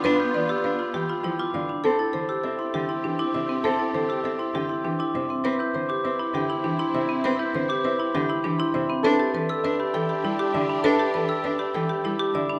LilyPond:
<<
  \new Staff \with { instrumentName = "Glockenspiel" } { \time 3/4 \key a \minor \tempo 4 = 100 r16 g'''16 r16 e'''16 r16 b''16 r16 b''16 r16 d'''16 r16 b''16 | r16 a'''16 r16 e'''16 r16 c'''16 r16 c'''16 r16 d'''16 r16 c'''16 | r16 a'''16 r16 e'''16 r16 c'''16 r16 c'''16 r16 d'''16 r16 c'''16 | r16 g'''16 r16 d'''16 r16 b''16 r16 b''16 r16 c'''16 r16 b''16 |
r16 g'''16 r16 d'''16 r16 b''16 r16 b''16 r16 c'''16 r16 b''16 | r16 a'''16 r16 e'''16 r16 b''16 r16 b''16 r16 d'''16 r16 b''16 | r16 a'''16 r16 e'''16 r16 b''16 r16 b''16 r16 d'''16 r16 b''16 | }
  \new Staff \with { instrumentName = "Harp" } { \time 3/4 \key a \minor <g' b' d'' f'' g''>8 d''8 f''8 g''8 g'8 f''8 | a'8 c''8 e''8 g''8 g'8 e''8 | a'8 c''8 e''8 g''8 g'8 e''8 | b'8 c''8 e''8 g''8 g'8 e''8 |
b'8 c''8 e''8 g''8 g'8 e''8 | a'8 b'8 e''8 g''8 g'8 e''8 | a'8 b'8 e''8 g''8 g'8 e''8 | }
  \new Staff \with { instrumentName = "Marimba" } { \time 3/4 \key a \minor b'16 f'16 b'16 g'16 b'16 f'16 g'16 f'16 e'16 f'16 d''16 d'16 | a'16 e'16 a'16 g'16 a'16 e'16 g'16 e'16 d'16 e'16 c''16 c'16 | a'16 e'16 a'16 g'16 a'16 e'16 g'16 e'16 d'16 e'16 c''16 c'16 | b'16 e'16 b'16 g'16 b'16 e'16 g'16 e'16 d'16 e'16 c''16 c'16 |
b'16 e'16 b'16 g'16 b'16 e'16 g'16 e'16 d'16 e'16 c''16 c'16 | b'16 g'16 b'16 a'16 b'16 g'16 a'16 g'16 e'16 g'16 d''16 d'16 | b'16 g'16 b'16 a'16 b'16 g'16 a'16 g'16 e'16 g'16 d''16 d'16 | }
  \new Staff \with { instrumentName = "String section" } { \time 3/4 \key a \minor <b f'>2~ <b f'>8. r16 | <c' g'>2.~ | <c' g'>2~ <c' g'>8. r16 | <c' e'>2.~ |
<c' e'>2~ <c' e'>8. r16 | <d' g'>2.~ | <d' g'>2~ <d' g'>8. r16 | }
  \new Staff \with { instrumentName = "Cello" } { \clef bass \time 3/4 \key a \minor d'16 r16 e16 r16 d'16 r16 e16 r16 f16 r16 d16 r16 | c'16 r16 d16 r16 c'16 r16 d16 r16 e16 r16 c16 r16 | c'16 r16 d16 r16 c'16 r16 d16 r16 e16 r16 c16 r16 | c'16 r16 d16 r16 c'16 r16 d16 r16 e16 r16 c16 r16 |
c'16 r16 d16 r16 c'16 r16 d16 r16 e16 r16 c16 r16 | d'16 r16 e16 r16 d'16 r16 e16 r16 g16 r16 d16 r16 | d'16 r16 e16 r16 d'16 r16 e16 r16 g16 r16 d16 r16 | }
>>